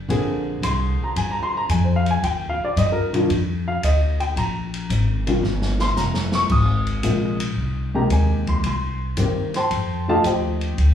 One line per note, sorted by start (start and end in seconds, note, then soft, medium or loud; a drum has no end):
0.09 0.61 A#1 medium
0.09 1.59 D3 medium
0.09 1.59 A#3 medium
0.09 1.60 C4 medium
0.09 1.60 G#4 medium
0.09 kick soft
0.09 ride medium
0.62 0.97 C2 medium
0.62 1.05 C6 medium
0.62 kick soft
0.62 hi-hat pedal medium
0.62 ride medium
0.99 muted upright bass stroke soft
1.04 1.14 A#5 medium
1.16 1.68 G2 medium
1.16 1.34 G#5 medium
1.16 kick soft
1.16 ride medium
1.31 1.50 A#5 medium
1.43 1.56 C6 loud
1.57 1.67 A#5 loud
1.69 2.21 F2 medium
1.69 1.88 G#5 medium
1.69 kick soft
1.69 hi-hat pedal medium
1.69 ride medium
1.84 2.04 C5 medium
1.96 2.09 F5 medium
2.06 ride soft
2.11 2.20 G#5 medium
2.23 2.57 D#2 medium
2.23 2.59 G5 medium
2.23 kick soft
2.23 ride medium
2.49 2.62 F5 medium
2.59 muted upright bass stroke soft
2.65 2.74 D5 medium
2.76 3.28 G2 medium
2.76 2.95 D#5 medium
2.76 kick soft
2.76 hi-hat pedal medium
2.76 ride medium
2.92 3.04 A#4 medium
3.13 3.28 D#3 medium
3.13 3.28 G3 medium
3.13 3.28 D4 medium
3.13 3.29 F4 medium
3.13 ride medium
3.30 3.81 F2 medium
3.30 kick soft
3.30 ride medium
3.68 3.83 F5 medium
3.83 4.35 D2 medium
3.83 4.19 D#5 medium
3.83 kick soft
3.83 hi-hat pedal medium
3.83 ride medium
4.20 4.36 G5 medium
4.20 ride soft
4.36 4.88 A#1 medium
4.36 4.87 A#5 medium
4.36 kick soft
4.36 ride medium
4.74 ride medium
4.90 5.42 G#1 medium
4.90 kick soft
4.90 hi-hat pedal medium
4.90 ride medium
5.27 5.42 D#3 medium
5.27 5.42 G3 medium
5.27 5.42 C#4 medium
5.27 5.42 F4 medium
5.27 ride medium
5.43 5.95 G1 medium
5.43 snare medium
5.62 snare medium
5.79 5.96 C6 loud
5.79 snare medium
5.96 6.48 F1 medium
5.96 6.33 A#5 medium
5.96 snare medium
5.96 hi-hat pedal medium
6.14 snare medium
6.32 6.50 C#6 loud
6.32 snare medium
6.49 7.02 G#1 medium
6.49 7.01 D#6 loud
6.49 kick medium
6.49 crash medium
6.87 ride soft
7.03 7.55 A#1 medium
7.03 7.36 C3 medium
7.03 7.37 G#3 medium
7.03 7.37 A#3 medium
7.03 7.37 F4 medium
7.03 kick soft
7.03 hi-hat pedal medium
7.03 ride medium
7.40 ride medium
7.57 8.09 C2 medium
7.57 kick soft
7.95 8.61 C3 medium
7.95 8.61 G#3 medium
7.95 8.61 A#3 medium
7.95 8.61 G4 medium
7.95 8.11 A#5 medium
8.10 8.62 D#2 medium
8.10 8.47 G#5 medium
8.10 kick soft
8.10 hi-hat pedal medium
8.10 ride medium
8.47 8.64 C6 medium
8.47 kick soft
8.47 ride soft
8.63 9.15 C2 medium
8.63 9.15 C6 medium
8.63 kick soft
8.63 ride medium
9.17 9.69 G2 medium
9.17 9.51 D#3 medium
9.17 9.51 A#3 medium
9.17 9.51 C4 medium
9.17 9.51 G4 medium
9.17 kick soft
9.17 hi-hat pedal medium
9.17 ride medium
9.54 10.05 C5 medium
9.54 10.05 G5 medium
9.54 10.05 A5 medium
9.54 10.05 C6 loud
9.54 snare soft
9.54 ride medium
9.71 10.23 F2 medium
9.71 kick soft
9.71 ride medium
10.08 10.74 F3 medium
10.08 10.75 A3 medium
10.08 10.75 D#4 medium
10.08 10.25 G4 medium
10.08 10.24 A4 medium
10.08 10.25 D#5 medium
10.08 10.25 F5 medium
10.08 10.25 A5 medium
10.24 10.76 D#2 medium
10.24 10.94 G4 medium
10.24 10.75 C5 medium
10.24 10.75 D#5 medium
10.24 10.94 G5 medium
10.24 kick soft
10.24 hi-hat pedal medium
10.24 ride medium
10.61 ride soft
10.78 10.94 D2 medium
10.78 kick soft
10.78 ride medium